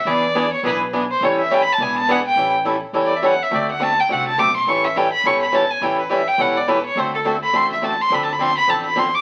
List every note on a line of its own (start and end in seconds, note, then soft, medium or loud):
0.05 0.52 E2 medium
0.05 0.25 E3 medium
0.05 0.25 B3 medium
0.05 0.25 D4 medium
0.05 0.25 G#4 medium
0.05 0.52 D5 medium
0.35 0.45 E3 medium
0.35 0.45 B3 loud
0.35 0.45 D4 medium
0.35 0.45 G#4 loud
0.53 0.64 C#5 medium
0.63 1.09 B1 medium
0.63 0.82 E3 medium
0.63 0.82 B3 medium
0.63 0.82 D4 medium
0.63 0.83 G#4 medium
0.63 0.75 B4 medium
0.93 1.03 E3 medium
0.93 1.03 B3 loud
0.93 1.03 D4 medium
0.93 1.03 G#4 medium
1.11 1.26 C5 medium
1.20 1.67 A1 medium
1.20 1.40 E3 medium
1.20 1.41 G3 medium
1.20 1.41 C#4 medium
1.20 1.41 E4 medium
1.20 1.41 A4 medium
1.20 1.39 C#5 medium
1.40 1.55 E5 medium
1.51 1.60 E3 medium
1.51 1.61 G3 medium
1.51 1.61 C#4 loud
1.51 1.61 E4 medium
1.51 1.61 A4 loud
1.51 1.64 G5 medium
1.62 1.74 B5 loud
1.72 1.84 A5 medium
1.78 2.24 E1 loud
1.78 1.98 E3 medium
1.78 1.98 B3 medium
1.78 1.98 D4 medium
1.78 1.99 G#4 medium
1.82 1.97 G#5 medium
1.98 2.13 A5 loud
2.09 2.18 E3 loud
2.09 2.18 B3 loud
2.09 2.19 D4 medium
2.09 2.19 G#4 loud
2.09 2.26 F#5 medium
2.27 2.52 G5 loud
2.36 2.82 A1 medium
2.36 2.55 E3 medium
2.36 2.55 G3 medium
2.36 2.56 C#4 medium
2.36 2.55 E4 medium
2.36 2.56 A4 medium
2.65 2.75 E3 medium
2.65 2.75 G3 medium
2.65 2.76 C#4 medium
2.65 2.76 E4 medium
2.65 2.76 A4 medium
2.93 3.40 E2 medium
2.93 3.12 E3 medium
2.93 3.13 G3 medium
2.93 3.13 C#4 medium
2.93 3.13 E4 medium
2.93 3.13 A4 medium
3.05 3.18 D5 medium
3.17 3.27 E5 medium
3.22 3.33 E3 medium
3.22 3.33 G3 medium
3.22 3.33 C#4 loud
3.22 3.33 E4 medium
3.22 3.33 A4 medium
3.22 3.44 F#5 loud
3.43 3.56 E5 medium
3.51 3.97 D2 medium
3.51 3.70 D3 medium
3.51 3.70 A3 medium
3.51 3.70 C4 medium
3.51 3.70 F#4 medium
3.51 3.71 A4 medium
3.51 3.69 D5 medium
3.71 3.84 F#5 medium
3.80 3.90 D3 medium
3.80 3.90 A3 medium
3.80 3.91 C4 medium
3.80 3.91 F#4 medium
3.80 3.91 A4 medium
3.80 4.01 A5 loud
4.00 4.14 G5 medium
4.09 4.33 C2 medium
4.09 4.28 D3 medium
4.09 4.28 A3 medium
4.09 4.28 C4 medium
4.09 4.28 F#4 medium
4.09 4.28 A4 medium
4.09 4.27 F#5 medium
4.28 4.40 A5 medium
4.38 4.62 B1 medium
4.38 4.48 D3 medium
4.38 4.48 A3 medium
4.38 4.48 C4 loud
4.38 4.48 F#4 medium
4.38 4.49 A4 medium
4.38 4.55 D6 loud
4.57 4.70 C6 loud
4.67 5.13 A1 medium
4.67 4.85 E3 medium
4.67 4.86 G3 medium
4.67 4.86 C#4 medium
4.67 4.86 E4 medium
4.67 4.86 A4 medium
4.67 4.86 C#6 medium
4.84 4.99 E5 medium
4.96 5.06 E3 medium
4.96 5.06 G3 medium
4.96 5.06 C#4 medium
4.96 5.06 E4 medium
4.96 5.06 A4 loud
4.96 5.12 G5 medium
5.13 5.28 B5 loud
5.24 5.70 E1 medium
5.24 5.43 E3 medium
5.24 5.43 G3 medium
5.24 5.43 C#4 medium
5.24 5.43 E4 medium
5.24 5.43 A4 medium
5.24 5.41 C#6 loud
5.42 5.56 B5 medium
5.52 5.63 E3 medium
5.52 5.63 G3 medium
5.52 5.63 C#4 medium
5.52 5.63 E4 loud
5.52 5.63 A4 medium
5.52 5.72 A5 medium
5.70 5.85 G#5 medium
5.81 6.27 A1 medium
5.81 6.00 E3 medium
5.81 6.00 G3 medium
5.81 6.00 C#4 medium
5.81 6.00 E4 medium
5.81 6.00 A4 medium
5.81 5.98 G5 medium
5.99 6.13 B4 soft
6.09 6.20 E3 medium
6.09 6.20 G3 medium
6.09 6.20 C#4 medium
6.09 6.21 E4 medium
6.09 6.21 A4 medium
6.09 6.29 E5 medium
6.28 6.43 G5 loud
6.38 6.84 E1 medium
6.38 6.57 E3 medium
6.38 6.57 G3 medium
6.38 6.57 C#4 medium
6.38 6.57 E4 medium
6.38 6.57 A4 medium
6.38 6.58 F#5 medium
6.57 6.71 D5 medium
6.68 6.78 E3 medium
6.68 6.78 G3 medium
6.68 6.78 C#4 medium
6.68 6.78 E4 medium
6.68 6.78 A4 loud
6.68 6.85 B4 medium
6.86 7.00 C#5 medium
6.95 7.42 D2 medium
6.95 7.15 D3 medium
6.95 7.15 A3 medium
6.95 7.15 C4 medium
6.95 7.15 F#4 medium
6.95 7.15 A4 medium
6.95 7.14 C5 medium
7.14 7.21 A4 medium
7.25 7.35 D3 medium
7.25 7.35 A3 medium
7.25 7.35 C4 medium
7.25 7.35 F#4 medium
7.25 7.36 A4 medium
7.43 7.58 B5 loud
7.53 7.99 A1 medium
7.53 7.72 D3 medium
7.53 7.72 A3 medium
7.53 7.72 C4 medium
7.53 7.72 F#4 medium
7.53 7.72 A4 medium
7.53 7.71 C6 loud
7.73 7.86 E5 medium
7.82 7.92 D3 medium
7.82 7.92 A3 medium
7.82 7.93 C4 medium
7.82 7.93 F#4 medium
7.82 7.93 A4 medium
7.82 8.02 A5 medium
8.01 8.15 C6 loud
8.10 8.56 D2 medium
8.10 8.30 D3 medium
8.10 8.30 F3 medium
8.10 8.30 C4 medium
8.10 8.30 D4 medium
8.10 8.30 A4 medium
8.10 8.24 B5 medium
8.23 8.34 A5 medium
8.32 8.43 B5 medium
8.39 8.49 D3 medium
8.39 8.50 F3 medium
8.39 8.50 C4 loud
8.39 8.50 D4 loud
8.39 8.50 A4 medium
8.39 8.57 C6 loud
8.58 8.71 B5 loud
8.67 9.14 A1 medium
8.67 8.86 D3 medium
8.67 8.86 F3 medium
8.67 8.87 C4 medium
8.67 8.87 D4 medium
8.67 8.87 A4 medium
8.67 8.85 A5 medium
8.86 9.00 B5 medium
8.96 9.06 D3 medium
8.96 9.06 F3 medium
8.96 9.07 C4 medium
8.96 9.07 D4 loud
8.96 9.07 A4 medium
8.96 9.16 C6 medium
9.14 9.21 D6 loud